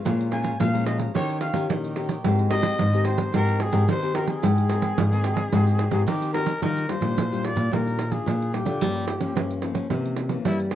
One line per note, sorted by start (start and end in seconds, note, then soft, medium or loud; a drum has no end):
0.05 0.52 A#2 medium
0.05 0.58 A#2 medium
0.05 0.29 G#3 medium
0.05 0.29 C#4 medium
0.05 0.29 F4 medium
0.05 0.30 G#4 medium
0.05 0.30 C#5 medium
0.05 0.31 F5 medium
0.05 0.32 A#5 medium
0.05 pandeiro medium
0.21 pandeiro soft
0.31 0.55 G#3 medium
0.31 0.55 C#4 medium
0.31 0.56 F4 medium
0.31 0.41 G#4 soft
0.31 0.42 C#5 soft
0.31 0.42 F5 medium
0.31 0.58 G#5 medium
0.31 0.43 A#5 medium
0.31 pandeiro medium
0.42 0.53 G#4 medium
0.42 0.54 C#5 medium
0.42 0.54 F5 medium
0.42 0.54 A#5 medium
0.42 pandeiro medium
0.60 1.06 A#2 medium
0.60 1.12 F3 medium
0.60 0.68 G#3 medium
0.60 0.68 C#4 medium
0.60 0.68 F4 medium
0.60 0.86 F5 medium
0.60 pandeiro medium
0.74 1.11 G#3 medium
0.74 1.11 C#4 medium
0.74 1.11 F4 medium
0.74 0.85 C#5 soft
0.74 0.86 F5 soft
0.74 0.86 A#5 soft
0.74 pandeiro soft
0.85 0.99 G#4 medium
0.85 0.99 C#5 medium
0.85 0.99 D#5 medium
0.85 0.98 F5 medium
0.85 0.97 A#5 medium
0.85 pandeiro medium
0.98 1.13 C#5 soft
0.98 1.13 F5 soft
0.98 1.12 A#5 soft
0.98 pandeiro medium
1.14 1.50 D#3 medium
1.14 1.67 D#3 medium
1.14 1.52 C#4 medium
1.14 1.39 D#4 medium
1.14 1.40 G4 medium
1.14 1.52 G4 soft
1.14 1.52 A#4 medium
1.14 1.41 C#5 medium
1.14 1.40 C#5 medium
1.14 1.41 D#5 medium
1.14 pandeiro medium
1.29 pandeiro soft
1.40 1.52 D#4 soft
1.40 1.53 G4 medium
1.40 1.53 C#5 soft
1.40 1.53 D#5 medium
1.40 1.67 F5 medium
1.40 pandeiro medium
1.53 1.66 D#3 medium
1.53 1.91 C#4 medium
1.53 1.64 D#4 medium
1.53 1.64 G4 medium
1.53 1.92 G4 medium
1.53 1.92 A#4 medium
1.53 1.64 C#5 medium
1.53 1.64 D#5 medium
1.53 pandeiro medium
1.70 2.22 A#2 medium
1.70 2.16 D#3 medium
1.70 pandeiro medium
1.83 1.95 G4 soft
1.83 1.96 C#5 soft
1.83 1.96 D#5 soft
1.83 pandeiro soft
1.96 2.14 C#4 soft
1.96 2.09 D#4 medium
1.96 2.09 G4 soft
1.96 2.14 G4 medium
1.96 2.15 A#4 medium
1.96 2.09 C#5 medium
1.96 2.07 D#5 medium
1.96 pandeiro medium
2.08 2.23 G4 medium
2.08 2.23 C#5 medium
2.08 2.22 D#5 medium
2.08 pandeiro medium
2.24 2.71 G#2 loud
2.24 2.77 G#3 medium
2.24 2.48 C4 medium
2.24 2.49 G4 medium
2.24 2.48 G4 medium
2.24 2.48 A#4 medium
2.24 2.50 C5 medium
2.24 2.50 D#5 medium
2.24 2.51 G#5 medium
2.24 pandeiro medium
2.39 pandeiro soft
2.50 2.88 C4 medium
2.50 2.61 G4 soft
2.50 2.88 G4 medium
2.50 2.88 A#4 medium
2.50 2.62 C5 soft
2.50 3.02 D#5 loud
2.50 2.62 D#5 medium
2.50 2.62 G#5 medium
2.50 pandeiro medium
2.62 2.73 G4 medium
2.62 2.73 C5 medium
2.62 2.73 D#5 medium
2.62 2.73 G#5 medium
2.62 pandeiro medium
2.79 3.26 G#2 medium
2.79 3.31 D#3 medium
2.79 pandeiro medium
2.93 3.30 C4 medium
2.93 3.30 G4 medium
2.93 3.30 A#4 medium
2.93 3.03 C5 soft
2.93 3.04 D#5 soft
2.93 3.05 G#5 medium
2.93 pandeiro soft
3.04 3.18 G4 medium
3.04 3.18 C5 medium
3.04 3.32 C5 medium
3.04 3.17 D#5 medium
3.04 3.16 G#5 medium
3.04 pandeiro medium
3.17 3.32 C5 soft
3.17 3.32 D#5 soft
3.17 3.31 G#5 soft
3.17 pandeiro medium
3.33 3.69 G#2 medium
3.33 3.86 G#3 medium
3.33 3.70 C4 soft
3.33 3.58 G4 medium
3.33 3.71 G4 soft
3.33 3.71 A#4 medium
3.33 3.64 A#4 loud
3.33 3.59 C5 medium
3.33 3.59 D#5 medium
3.33 3.60 G#5 medium
3.33 pandeiro medium
3.49 pandeiro soft
3.59 3.70 G4 soft
3.59 3.89 G#4 medium
3.59 3.71 C5 soft
3.59 3.71 D#5 medium
3.59 3.71 G#5 medium
3.59 pandeiro medium
3.72 3.85 G#2 medium
3.72 3.83 C4 medium
3.72 3.82 G4 medium
3.72 3.83 G4 medium
3.72 3.83 A#4 medium
3.72 3.82 C5 medium
3.72 3.83 D#5 medium
3.72 3.83 G#5 medium
3.72 pandeiro medium
3.88 4.35 D#3 medium
3.88 4.40 D#3 medium
3.88 3.98 C4 medium
3.88 3.98 G4 medium
3.88 3.98 A#4 medium
3.88 4.17 C5 medium
3.88 pandeiro medium
4.02 4.12 C4 medium
4.02 4.12 G4 medium
4.02 4.12 A#4 medium
4.02 4.13 C5 soft
4.02 4.14 D#5 soft
4.02 4.14 G#5 medium
4.02 pandeiro soft
4.14 4.51 C4 medium
4.14 4.27 G4 medium
4.14 4.51 G4 medium
4.14 4.28 A#4 medium
4.14 4.51 A#4 medium
4.14 4.28 C5 medium
4.14 4.27 D#5 medium
4.14 4.25 G#5 medium
4.14 pandeiro medium
4.27 6.03 G#4 medium
4.27 4.41 C5 medium
4.27 4.41 D#5 medium
4.27 4.41 G#5 medium
4.27 pandeiro medium
4.42 4.90 G#2 medium
4.42 4.96 G#3 medium
4.42 4.67 G4 medium
4.42 4.68 C5 medium
4.42 4.69 D#5 medium
4.42 4.69 G#5 medium
4.42 pandeiro medium
4.58 pandeiro soft
4.68 5.07 C4 medium
4.68 4.80 G4 soft
4.68 5.07 A#4 medium
4.68 4.81 C5 medium
4.68 4.81 D#5 medium
4.68 4.81 G#5 medium
4.68 pandeiro medium
4.81 4.92 G4 medium
4.81 4.92 C5 medium
4.81 4.92 D#5 medium
4.81 4.92 G#5 loud
4.81 pandeiro medium
4.98 5.44 G#2 medium
4.98 5.50 D#3 medium
4.98 pandeiro medium
5.12 5.49 C4 medium
5.12 5.50 A#4 medium
5.12 5.22 C5 soft
5.12 5.23 D#5 soft
5.12 5.23 G#5 medium
5.12 pandeiro soft
5.23 5.37 G4 medium
5.23 5.36 C5 medium
5.23 5.35 D#5 medium
5.23 5.34 G#5 medium
5.23 pandeiro medium
5.36 5.51 C5 soft
5.36 5.50 D#5 soft
5.36 5.50 G#5 soft
5.36 pandeiro medium
5.52 5.87 G#2 medium
5.52 6.05 G#3 medium
5.52 5.78 C4 medium
5.52 5.76 G4 medium
5.52 5.79 G4 soft
5.52 5.79 A#4 medium
5.52 5.77 C5 medium
5.52 5.78 D#5 medium
5.52 5.79 G#5 medium
5.52 pandeiro medium
5.67 pandeiro soft
5.78 5.90 G4 soft
5.78 5.90 C5 soft
5.78 5.91 D#5 medium
5.78 5.91 G#5 medium
5.78 pandeiro medium
5.91 6.04 G#2 loud
5.91 6.02 C4 medium
5.91 6.02 G4 medium
5.91 6.02 A#4 medium
5.91 6.02 C5 medium
5.91 6.02 D#5 medium
5.91 6.02 G#5 medium
5.91 pandeiro medium
6.07 6.54 D#3 medium
6.07 6.59 D#3 medium
6.07 6.30 C4 medium
6.07 6.32 G4 medium
6.07 6.31 G4 medium
6.07 6.31 A#4 medium
6.07 pandeiro medium
6.21 6.32 C5 soft
6.21 6.33 D#5 soft
6.21 6.34 G#5 soft
6.21 pandeiro soft
6.33 6.52 C4 soft
6.33 6.46 G4 soft
6.33 6.52 G4 medium
6.33 6.60 A#4 loud
6.33 6.52 A#4 medium
6.33 6.47 C5 medium
6.33 6.46 D#5 medium
6.33 6.45 G#5 medium
6.33 pandeiro medium
6.46 6.61 C5 medium
6.46 6.60 D#5 medium
6.46 6.60 G#5 medium
6.46 pandeiro medium
6.62 6.85 D#3 loud
6.62 7.14 D#3 soft
6.62 6.85 G3 medium
6.62 6.86 D4 soft
6.62 6.86 F4 soft
6.62 6.91 A#4 medium
6.62 pandeiro medium
6.77 pandeiro soft
6.89 6.98 G3 medium
6.89 6.98 D4 medium
6.89 6.98 F4 medium
6.89 7.47 C5 medium
6.89 pandeiro medium
7.01 7.14 A#2 medium
7.01 7.25 G3 medium
7.01 7.26 D4 soft
7.01 7.26 F4 medium
7.01 pandeiro medium
7.17 7.52 A#2 medium
7.17 7.69 A#2 medium
7.17 pandeiro medium
7.32 7.68 G3 medium
7.32 7.68 D4 medium
7.32 7.68 F4 medium
7.32 pandeiro soft
7.45 7.75 D5 medium
7.45 pandeiro medium
7.56 7.68 A#2 medium
7.56 pandeiro medium
7.71 8.18 A#2 medium
7.71 8.24 D#3 soft
7.71 7.97 G3 soft
7.71 7.98 D4 soft
7.71 7.98 F4 soft
7.71 8.13 A#4 medium
7.71 pandeiro medium
7.87 pandeiro soft
7.99 pandeiro medium
8.11 8.49 D4 medium
8.11 8.49 F4 medium
8.11 8.55 G#4 medium
8.11 pandeiro medium
8.26 8.61 A#2 medium
8.26 8.79 A#2 soft
8.26 pandeiro medium
8.42 pandeiro soft
8.52 8.78 G3 medium
8.52 8.79 D4 medium
8.52 8.79 F4 medium
8.52 9.63 G4 medium
8.52 pandeiro medium
8.65 8.81 D3 medium
8.65 pandeiro medium
8.81 9.33 G2 soft
8.81 9.07 F3 soft
8.81 9.04 G3 medium
8.81 9.07 A#3 medium
8.81 9.08 C#4 medium
8.81 pandeiro medium
8.97 pandeiro soft
9.08 pandeiro medium
9.20 9.58 F3 medium
9.20 9.58 A#3 medium
9.20 9.33 C#4 medium
9.20 9.59 C#4 medium
9.20 pandeiro medium
9.36 9.88 G2 medium
9.36 9.71 C#4 medium
9.36 pandeiro medium
9.51 pandeiro soft
9.62 9.86 F3 soft
9.62 9.86 A#3 soft
9.62 9.86 C#4 soft
9.62 pandeiro medium
9.75 9.87 C#4 medium
9.75 pandeiro medium
9.90 10.37 C3 medium
9.90 10.43 C3 soft
9.90 10.27 E3 soft
9.90 10.28 A#3 soft
9.90 10.28 C#4 soft
9.90 pandeiro medium
10.05 pandeiro soft
10.17 pandeiro medium
10.29 10.68 E3 medium
10.29 10.68 A#3 medium
10.29 10.68 C#4 medium
10.29 pandeiro medium
10.45 10.75 G2 soft
10.45 10.75 G3 medium
10.45 10.59 E4 medium
10.45 pandeiro medium
10.60 pandeiro soft
10.71 10.75 E3 medium
10.71 pandeiro medium